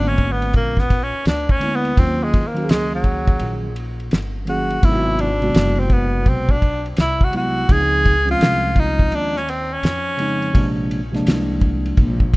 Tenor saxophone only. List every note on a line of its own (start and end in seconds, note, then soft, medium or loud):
0.08 0.34 C#4 medium
0.32 0.55 B3 medium
0.56 0.81 A#3 medium
0.79 1.05 B3 medium
1.03 1.27 C#4 medium
1.27 1.53 D4 medium
1.51 1.77 C#4 medium
1.76 2.01 B3 medium
1.99 2.25 C4 loud
2.23 2.49 G#3 medium
2.47 2.72 A#3 medium
2.70 2.93 G#3 medium
2.95 3.61 F#3 medium
4.49 4.86 F#4 medium
4.85 5.22 E4 loud
5.20 5.81 D4 medium
5.80 5.94 C4 medium
5.93 6.30 B3 medium
6.29 6.53 C4 medium
6.52 6.86 D4 medium
7.01 7.25 E4 medium
7.24 7.35 F#4 medium
7.37 7.74 F#4 loud
7.72 8.29 G#4 loud
8.31 8.81 F4 loud
8.79 9.16 D#4 medium
9.15 9.39 D4 loud
9.38 9.51 C#4 medium
9.50 9.75 C4 medium
9.74 10.79 C#4 medium